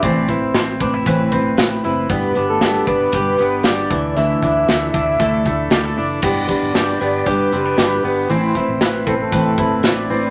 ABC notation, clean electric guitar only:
X:1
M:4/4
L:1/16
Q:1/4=116
K:G
V:1 name="Clean electric guitar"
C2 E2 C2 D E B2 C2 B2 E2 | B,2 D2 B,2 D2 G2 B,2 G2 E,2 | E,2 D2 A,2 D2 A2 A,2 G A D2 | B,2 D2 G2 B,2 G2 C D G2 B,2 |
C2 E2 B2 C2 B2 E2 B2 C2 |]